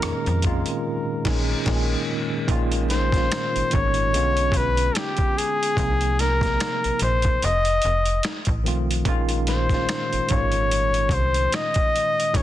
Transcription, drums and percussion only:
0.02 cross-stick, closed hi-hat
0.26 closed hi-hat
0.42 kick, closed hi-hat
0.66 closed hi-hat
1.25 kick, snare, crash
1.66 kick, snare, crash
2.48 kick, closed hi-hat
2.72 closed hi-hat
2.90 snare, closed hi-hat
3.12 kick, snare, closed hi-hat
3.32 finger snap, snare, closed hi-hat
3.56 closed hi-hat
3.71 kick, closed hi-hat
3.94 closed hi-hat
4.14 closed hi-hat
4.37 closed hi-hat
4.52 kick, closed hi-hat
4.77 closed hi-hat
4.95 finger snap, snare, closed hi-hat
5.17 kick, closed hi-hat
5.38 closed hi-hat
5.63 closed hi-hat
5.77 kick, closed hi-hat
6.01 closed hi-hat
6.19 snare, closed hi-hat
6.41 kick, snare, closed hi-hat
6.60 finger snap, snare, closed hi-hat
6.84 closed hi-hat
6.99 closed hi-hat
7.22 kick, closed hi-hat
7.42 closed hi-hat
7.65 closed hi-hat
7.82 closed hi-hat
8.06 closed hi-hat
8.23 finger snap, snare, closed hi-hat
8.45 kick, closed hi-hat
8.66 closed hi-hat
8.91 closed hi-hat
9.05 kick, closed hi-hat
9.29 closed hi-hat
9.47 snare, closed hi-hat
9.69 kick, snare, closed hi-hat
9.89 finger snap, snare, closed hi-hat
10.13 closed hi-hat
10.29 kick, closed hi-hat
10.52 closed hi-hat
10.71 closed hi-hat
10.94 closed hi-hat
11.09 kick, closed hi-hat
11.34 closed hi-hat
11.52 finger snap, snare, closed hi-hat
11.74 kick, closed hi-hat
11.96 closed hi-hat
12.20 closed hi-hat
12.34 kick, closed hi-hat

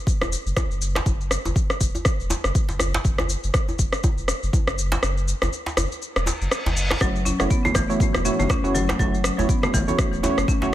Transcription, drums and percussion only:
0.07 kick, shaker
0.21 cross-stick, djembe tone, shaker
0.33 shaker
0.47 shaker
0.57 kick, cross-stick, djembe tone, shaker
0.71 shaker
0.82 shaker
0.95 cross-stick, djembe slap, shaker
1.06 kick, djembe tone, shaker
1.21 shaker
1.31 cross-stick, shaker
1.45 djembe tone, shaker
1.56 kick, shaker
1.70 cross-stick, shaker
1.81 kick, shaker
1.95 djembe tone, shaker
2.05 kick, cross-stick, shaker
2.20 shaker
2.30 djembe slap, djembe tone, shaker
2.44 cross-stick, shaker
2.55 kick, shaker
2.69 djembe slap, shaker
2.79 cross-stick, djembe tone, shaker
2.94 djembe slap, shaker
3.05 kick, shaker
3.18 cross-stick, djembe tone, shaker
3.29 shaker
3.44 shaker
3.54 kick, cross-stick, shaker
3.68 djembe tone, shaker
3.79 kick, shaker
3.93 cross-stick, shaker
4.04 kick, djembe tone, shaker
4.18 shaker
4.28 cross-stick, shaker
4.43 shaker
4.53 kick, djembe tone, shaker
4.67 cross-stick, shaker
4.79 shaker
4.92 djembe slap, djembe tone, shaker
5.03 cross-stick, shaker
5.17 shaker
5.28 shaker
5.42 cross-stick, djembe tone, shaker
5.53 shaker
5.66 djembe slap, shaker
5.77 cross-stick, djembe tone, shaker
5.92 shaker
6.02 shaker
6.16 cross-stick, shaker
6.26 djembe slap, djembe tone, shaker
6.42 shaker
6.51 cross-stick, shaker
6.66 djembe slap, djembe tone, shaker
6.77 shaker
6.91 cross-stick, djembe slap, shaker
7.01 kick, cross-stick, muted conga, high conga, shaker
7.16 shaker
7.26 djembe tone, shaker
7.40 cross-stick, muted conga, shaker
7.50 kick, shaker
7.65 djembe tone, high conga, shaker
7.74 kick, cross-stick, muted conga, high conga, low conga, shaker
7.90 shaker
8.00 kick, low conga, shaker
8.14 cross-stick, muted conga, djembe tone, shaker
8.25 low conga, shaker
8.40 high conga, shaker
8.49 kick, cross-stick, muted conga, djembe tone, shaker
8.65 shaker
8.75 high conga, shaker
8.89 cross-stick, djembe slap, shaker
8.99 kick, muted conga, high conga, djembe tone, shaker
9.14 shaker
9.24 cross-stick, shaker
9.39 muted conga, djembe tone, shaker
9.49 kick, shaker
9.63 cross-stick, high conga, shaker
9.74 kick, muted conga, high conga, low conga, shaker
9.88 high conga, djembe tone, shaker
9.99 kick, cross-stick, shaker
10.13 muted conga, shaker
10.24 djembe slap, djembe tone, shaker
10.38 cross-stick, shaker
10.48 kick, muted conga, shaker
10.62 djembe slap, shaker

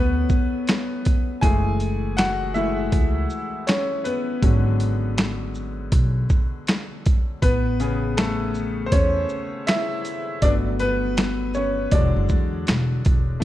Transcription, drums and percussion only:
0.29 kick, shaker
0.67 finger snap, snare, closed hi-hat
1.05 kick, closed hi-hat, shaker
1.43 kick, closed hi-hat
1.80 closed hi-hat, shaker
2.18 finger snap, snare, closed hi-hat
2.55 shaker
2.92 kick, closed hi-hat
3.30 shaker
3.67 finger snap, snare, closed hi-hat
4.05 closed hi-hat, shaker
4.43 kick, closed hi-hat
4.80 closed hi-hat, shaker
5.18 finger snap, snare, closed hi-hat
5.54 shaker
5.92 kick, closed hi-hat
6.29 kick, shaker
6.67 finger snap, snare, closed hi-hat
7.06 kick, closed hi-hat, shaker
7.42 kick, closed hi-hat
7.80 closed hi-hat, shaker
8.17 finger snap, snare, closed hi-hat
8.54 shaker
8.92 kick, closed hi-hat
9.29 shaker
9.67 finger snap, snare, closed hi-hat
10.05 closed hi-hat, shaker
10.42 kick, closed hi-hat
10.79 closed hi-hat, shaker
11.17 finger snap, snare, closed hi-hat
11.54 shaker
11.91 kick, closed hi-hat
12.29 kick, shaker
12.67 finger snap, snare, closed hi-hat
13.05 kick, closed hi-hat, shaker

